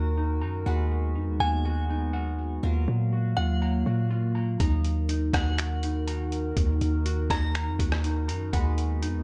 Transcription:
0.00 0.43 D#2 loud
0.00 0.62 D#3 medium
0.00 0.16 D#4 medium
0.00 0.62 D#4 medium
0.00 0.67 F#4 medium
0.00 2.59 F#4 medium
0.00 0.62 A#4 medium
0.00 0.40 A#5 loud
0.00 0.63 A#5 medium
0.00 downlifter medium
0.17 0.67 D#4 medium
0.41 0.65 F#2 medium
0.41 0.66 A#5 medium
0.66 1.17 D#2 loud
0.66 2.68 G#3 medium
0.66 2.61 G#3 medium
0.66 2.61 B3 medium
0.66 2.61 F#4 medium
0.66 2.61 B4 medium
0.66 1.39 F#5 medium
1.15 1.29 F2 medium
1.15 1.88 D#4 medium
1.28 1.40 D#2 loud
1.40 2.59 D#2 loud
1.40 2.12 F#5 loud
1.40 2.59 G#5 medium
1.65 2.63 F#4 medium
1.90 2.63 D#4 medium
2.13 2.63 F#5 loud
2.63 2.87 D#2 loud
2.63 4.65 F#3 medium
2.63 4.58 F#3 medium
2.63 4.58 A#3 medium
2.63 4.58 F4 medium
2.63 8.49 A#4 medium
2.63 4.58 F5 medium
2.88 3.35 A#2 loud
3.13 3.85 F#4 medium
3.37 3.84 D#2 loud
3.37 4.09 F4 medium
3.37 3.60 F#5 medium
3.62 4.34 A#5 loud
3.86 4.57 A#2 loud
3.86 4.60 F#4 medium
4.11 4.60 F4 medium
4.35 4.59 A#5 medium
4.60 5.31 D#2 loud
4.60 8.50 D#3 medium
4.60 8.49 D#4 medium
4.60 8.50 D#4 medium
4.60 8.49 F#4 medium
4.60 8.50 A#4 medium
4.60 5.33 A#5 loud
4.60 kick loud
4.60 closed hi-hat medium
4.85 closed hi-hat medium
5.09 5.82 D#4 medium
5.09 closed hi-hat medium
5.33 6.53 D#2 loud
5.33 6.53 F#5 medium
5.33 6.06 A#5 medium
5.33 kick medium
5.33 cross-stick medium
5.33 closed hi-hat medium
5.58 7.04 F#4 medium
5.58 finger snap loud
5.58 closed hi-hat medium
5.83 7.29 D#4 medium
5.83 closed hi-hat medium
6.07 7.53 A#5 medium
6.07 closed hi-hat medium
6.32 closed hi-hat medium
6.57 6.80 D#2 loud
6.57 kick loud
6.57 closed hi-hat medium
6.81 7.28 D#2 loud
6.81 closed hi-hat medium
7.06 7.79 F#4 medium
7.06 closed hi-hat medium
7.30 7.69 D#2 loud
7.30 8.03 D#4 medium
7.30 8.49 A#5 medium
7.30 kick loud
7.30 cross-stick medium
7.30 closed hi-hat medium
7.55 8.27 A#5 loud
7.55 finger snap loud
7.55 closed hi-hat medium
7.67 7.79 F2 loud
7.79 8.30 D#2 loud
7.79 8.53 F#4 medium
7.79 kick loud
7.79 closed hi-hat medium
7.92 cross-stick medium
8.04 8.53 D#4 medium
8.04 closed hi-hat medium
8.28 8.52 F#2 loud
8.28 8.53 A#5 medium
8.28 closed hi-hat medium
8.53 9.04 D#2 loud
8.53 9.23 G#3 medium
8.53 9.23 B3 medium
8.53 9.23 F#4 medium
8.53 9.23 B4 medium
8.53 9.23 F#5 medium
8.53 kick loud
8.53 closed hi-hat medium
8.78 closed hi-hat medium
9.02 9.16 F2 medium
9.02 9.23 D#4 medium
9.02 closed hi-hat medium
9.15 9.23 D#2 loud

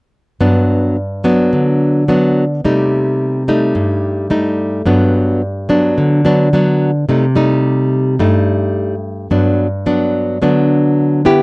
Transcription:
0.40 1.49 G2 medium
0.40 0.96 F#3 soft
0.40 0.96 B3 soft
0.40 0.96 D4 soft
1.24 2.03 F#3 medium
1.24 2.03 B3 medium
1.24 2.03 D4 medium
1.53 2.61 D3 medium
2.08 2.44 F#3 medium
2.08 2.44 B3 soft
2.08 2.44 D4 medium
2.65 3.72 C3 medium
2.65 3.43 G3 soft
2.65 3.43 A3 soft
2.65 3.43 D#4 medium
3.48 4.26 G3 medium
3.48 4.26 A3 medium
3.48 4.27 D#4 medium
3.75 4.83 G2 medium
4.30 4.81 G3 soft
4.30 4.81 A3 medium
4.30 4.81 D#4 medium
4.86 5.94 G2 medium
4.86 5.41 F#3 soft
4.86 5.41 B3 soft
4.86 5.41 D4 medium
5.69 6.20 F#3 medium
5.69 6.20 B3 medium
5.69 6.20 D4 medium
5.98 7.06 D3 medium
6.25 6.48 F#3 medium
6.25 6.48 B3 medium
6.25 6.48 D4 medium
6.53 6.90 F#3 medium
6.53 6.90 B3 medium
6.53 6.91 D4 medium
7.09 8.17 C3 medium
7.09 7.25 G3 soft
7.09 7.25 A3 soft
7.09 7.25 D#4 soft
7.36 8.15 G3 medium
7.36 8.15 A3 medium
7.36 8.15 D#4 medium
8.19 9.28 G2 medium
8.19 8.94 G3 soft
8.19 8.94 A3 medium
8.19 8.94 D#4 soft
9.31 10.39 G2 medium
9.31 9.66 F#3 soft
9.31 9.67 B3 medium
9.31 9.67 D4 medium
9.86 10.37 F#3 medium
9.86 10.37 B3 medium
9.86 10.38 D4 medium
10.42 11.43 D3 medium
10.42 11.21 F#3 medium
10.42 11.21 B3 medium
10.42 11.21 D4 medium
11.25 11.43 B3 medium
11.25 11.43 E4 medium
11.25 11.43 G4 medium

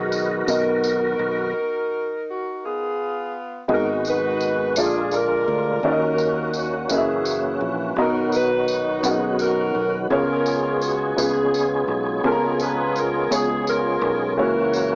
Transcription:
0.00 0.44 B1 medium
0.00 0.44 B2 medium
0.00 1.53 D#3 medium
0.00 0.48 B3 medium
0.00 1.53 B3 medium
0.00 0.49 D#4 medium
0.00 0.45 F#4 medium
0.00 0.48 F#4 medium
0.00 1.51 F#4 medium
0.00 0.49 G#4 loud
0.00 0.48 A#4 medium
0.00 1.51 A#4 medium
0.00 0.11 D#5 medium
0.12 tambourine medium
0.47 1.15 B1 medium
0.47 1.15 B3 medium
0.47 2.95 D#4 medium
0.47 1.15 F#4 medium
0.47 2.12 F#4 medium
0.47 1.15 A#4 medium
0.47 2.99 A#4 loud
0.47 1.16 D#5 medium
0.47 tambourine loud
0.84 tambourine medium
1.19 1.52 B1 medium
2.29 2.61 F#4 medium
2.65 3.67 B3 medium
2.65 3.67 F4 medium
2.65 3.35 G#4 loud
3.68 4.76 G#1 medium
3.68 4.72 G#2 medium
3.68 4.75 D#3 medium
3.68 5.82 G#3 medium
3.68 4.36 B3 medium
3.68 4.75 B3 medium
3.68 4.36 D#4 medium
3.68 4.36 F#4 medium
3.68 4.75 F#4 medium
3.68 4.37 G#4 medium
3.68 4.37 D#5 medium
3.73 4.07 D#4 medium
3.73 4.08 F#4 medium
3.73 3.88 A#4 medium
4.05 4.74 D#4 medium
4.05 4.74 B4 loud
4.05 tambourine medium
4.09 4.74 F#4 medium
4.41 tambourine medium
4.76 5.43 A#1 medium
4.76 5.80 A#2 medium
4.76 5.82 D3 medium
4.76 7.94 A#3 medium
4.76 5.44 A#3 medium
4.76 5.44 D4 medium
4.76 5.83 F4 medium
4.76 5.44 F4 medium
4.76 5.44 G#4 medium
4.76 5.14 G#4 medium
4.76 5.44 D5 medium
4.76 tambourine loud
4.81 5.14 D4 medium
4.81 5.14 F4 medium
5.11 5.81 F4 medium
5.11 5.85 A#4 loud
5.11 tambourine medium
5.15 5.81 D4 medium
5.48 5.80 D2 medium
5.83 6.86 D#2 medium
5.83 6.89 D#3 medium
5.83 6.87 D#3 medium
5.83 7.95 C#4 medium
5.83 6.51 C#4 medium
5.83 6.88 C#4 medium
5.83 6.51 D#4 medium
5.83 10.08 F#4 medium
5.83 6.51 F#4 medium
5.83 6.57 F#4 medium
5.83 6.51 A#4 medium
5.83 6.52 A#4 medium
5.83 5.91 D5 medium
5.92 6.55 D#5 medium
6.18 tambourine medium
6.54 tambourine medium
6.58 6.90 F#4 medium
6.89 7.58 F#1 medium
6.89 7.96 E3 medium
6.89 7.57 C#4 medium
6.89 7.95 C#4 medium
6.89 7.57 E4 medium
6.89 7.57 F#4 medium
6.89 7.58 A#4 medium
6.89 6.97 D#5 medium
6.89 tambourine loud
6.94 7.95 E4 medium
6.94 7.63 G#4 medium
6.94 7.61 E5 medium
7.25 tambourine medium
7.61 7.94 A#1 medium
7.96 9.00 B1 medium
7.96 9.00 B2 medium
7.96 10.09 D#3 medium
7.96 10.09 F#3 medium
7.96 14.34 B3 medium
7.96 8.65 B3 medium
7.96 8.65 D#4 medium
7.96 8.34 D#4 medium
7.96 8.65 F#4 medium
7.96 8.34 F#4 medium
7.96 8.65 D#5 medium
7.96 8.65 A#5 medium
8.00 8.32 A#4 medium
8.32 9.37 D#4 medium
8.32 9.37 F#4 medium
8.32 9.01 B4 loud
8.32 tambourine medium
8.68 tambourine medium
9.03 9.71 B1 medium
9.03 9.71 B3 medium
9.03 9.11 C#4 soft
9.03 9.71 F#4 medium
9.03 9.41 G#4 medium
9.03 9.72 A#4 medium
9.03 9.72 F#5 medium
9.03 tambourine loud
9.11 9.75 D#4 medium
9.39 9.96 D#4 medium
9.39 9.96 F#4 medium
9.39 9.96 A#4 loud
9.39 tambourine medium
9.75 10.08 B1 medium
10.10 11.13 C#2 medium
10.10 11.14 C#3 medium
10.10 14.33 G#3 medium
10.10 10.78 B3 medium
10.10 14.95 C#4 medium
10.10 10.78 C#4 medium
10.10 10.78 F4 medium
10.10 11.15 F4 medium
10.10 14.33 G#4 medium
10.10 10.78 G#4 medium
10.10 10.79 A#4 medium
10.10 10.79 C#5 medium
10.46 tambourine medium
10.82 11.19 F#4 medium
10.82 tambourine medium
11.16 11.85 C#2 medium
11.16 11.84 B3 medium
11.16 11.84 C#4 medium
11.16 11.85 F4 medium
11.16 11.85 G#4 medium
11.16 11.85 B4 medium
11.16 tambourine loud
11.20 12.22 B3 medium
11.20 12.22 F4 medium
11.20 11.86 G#4 medium
11.54 tambourine medium
11.88 12.21 B1 medium
12.24 13.27 C#2 medium
12.24 13.27 C#3 medium
12.24 12.91 B3 medium
12.24 12.91 C#4 medium
12.24 12.92 F4 medium
12.24 13.28 F4 medium
12.24 12.92 G#4 medium
12.24 12.31 A4 medium
12.24 12.59 A#4 medium
12.32 12.95 A#5 medium
12.60 12.97 B4 loud
12.60 tambourine medium
12.96 13.32 A#4 loud
12.96 tambourine medium
13.30 13.98 C#2 medium
13.30 13.98 B3 medium
13.30 13.98 C#4 medium
13.30 13.98 F4 medium
13.30 13.99 G#4 medium
13.30 13.66 G#4 medium
13.30 13.99 C#5 medium
13.30 tambourine loud
13.67 14.35 F4 medium
13.67 14.35 A#4 loud
13.67 tambourine medium
14.02 14.37 B1 medium
14.37 14.95 C#2 medium
14.37 14.95 C#3 medium
14.37 14.95 E3 medium
14.37 14.95 A#3 medium
14.37 14.95 C#4 medium
14.37 14.95 E4 medium
14.37 14.95 F#4 medium
14.37 14.95 A#4 loud
14.37 14.95 C#5 medium
14.73 tambourine medium

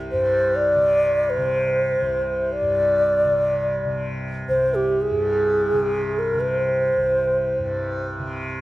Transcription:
0.00 2.01 C2 soft
0.00 0.13 G2 soft
0.00 0.76 C3 soft
0.11 2.61 G2 soft
0.11 0.57 C5 medium
0.56 1.31 D5 medium
0.76 1.37 C3 soft
1.30 2.54 C5 medium
1.37 3.24 C3 soft
2.01 4.48 C2 soft
2.52 4.02 D5 medium
2.62 5.11 G2 soft
3.24 3.85 C3 soft
3.85 5.72 C3 soft
4.48 6.96 C2 soft
4.48 4.76 C5 medium
4.75 5.03 G4 medium
5.01 6.20 G#4 medium
5.11 7.58 G2 soft
5.72 6.34 C3 soft
6.19 6.42 A#4 medium
6.34 8.19 C3 soft
6.41 8.08 C5 medium
6.97 8.61 C2 soft
7.59 8.61 G2 soft
8.19 8.61 C3 soft

